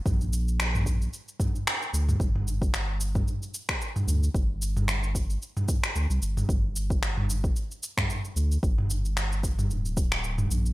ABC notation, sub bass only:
X:1
M:4/4
L:1/16
Q:"Swing 16ths" 1/4=112
K:Gm
V:1 name="Sub bass" clef=bass
B,,,8 z6 D,,2 | G,,,8 z6 D,,2 | G,,,8 z4 D,, C,, G,,,2 | G,,,8 z6 D,,2 |
G,,,8 D,,,6 B,,,2 |]